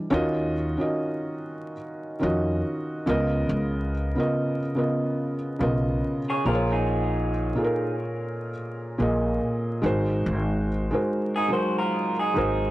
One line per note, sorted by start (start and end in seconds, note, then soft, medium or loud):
0.00 0.12 E3 soft
0.00 0.13 G3 soft
0.00 0.12 D4 medium
0.10 0.76 D#2 loud
0.10 0.52 D#3 loud
0.10 0.52 C#4 loud
0.10 0.53 F4 loud
0.10 0.54 F#4 loud
0.10 0.54 D#5 loud
0.77 1.73 D#3 medium
0.77 1.73 C#4 medium
0.77 1.73 F4 medium
0.77 1.74 F#4 medium
0.81 1.75 D#5 medium
2.19 2.61 F2 medium
2.19 3.05 D#3 medium
2.19 3.06 C#4 medium
2.19 3.06 F4 medium
2.19 3.07 F#4 medium
2.19 3.07 D#5 loud
3.06 3.46 C#2 loud
3.06 3.91 C#3 medium
3.06 3.91 B3 medium
3.06 3.91 F4 medium
3.06 3.92 A#4 loud
3.06 3.92 D#5 loud
3.49 4.13 C#2 loud
4.15 4.58 C#3 medium
4.15 4.58 B3 medium
4.15 4.59 F4 medium
4.15 4.60 A#4 medium
4.20 4.60 D#5 medium
4.75 5.34 C#3 medium
4.75 5.35 B3 medium
4.75 5.35 F4 medium
4.75 5.36 A#4 medium
4.75 5.36 D#5 medium
5.59 5.99 B1 medium
5.59 6.18 C#3 medium
5.59 6.19 B3 medium
5.59 6.19 F4 medium
5.59 6.20 A#4 medium
5.59 6.20 D#5 medium
6.30 6.44 G#4 medium
6.30 6.44 C#5 medium
6.45 7.52 A#1 medium
6.45 7.29 A#2 loud
6.45 7.29 A#3 medium
6.45 7.30 F4 medium
6.45 6.71 F4 medium
6.45 7.30 G#4 loud
6.45 6.70 A#4 medium
6.45 6.54 C5 medium
6.55 7.34 C#5 loud
6.72 7.94 D#4 medium
6.72 7.94 G#4 medium
7.55 8.49 A#2 medium
7.55 8.50 A#3 medium
7.55 8.50 F4 medium
7.55 8.51 G#4 medium
7.55 7.62 A4 medium
7.64 8.54 A#4 loud
8.98 9.38 A#1 medium
8.98 9.82 A#2 medium
8.98 9.83 A#3 medium
8.98 9.83 F4 medium
8.98 9.84 G#4 medium
8.98 9.84 D#5 loud
9.82 10.22 G#1 loud
9.82 10.67 G#3 medium
9.82 10.67 D#4 loud
9.82 10.68 F#4 loud
9.82 10.68 A#4 medium
9.86 10.69 C5 loud
10.26 10.90 G#1 loud
10.91 11.34 G#3 medium
10.91 11.34 D#4 medium
10.91 11.35 F#4 medium
10.91 11.35 A#4 medium
10.91 11.35 C5 medium
11.36 11.52 D#4 medium
11.36 11.51 G#4 medium
11.48 12.10 F#3 medium
11.48 12.09 G#3 medium
11.48 12.09 D#4 medium
11.48 12.10 A#4 medium
11.52 11.77 F#4 medium
11.52 12.11 C5 medium
11.52 11.77 C5 medium
11.78 12.18 F4 medium
11.78 12.18 A#4 medium
12.19 12.71 D#4 medium
12.19 12.71 G#4 medium
12.34 12.71 G#1 medium
12.34 12.71 G#3 medium
12.34 12.71 D#4 medium
12.34 12.71 F#4 medium
12.34 12.71 A#4 medium
12.38 12.71 C5 loud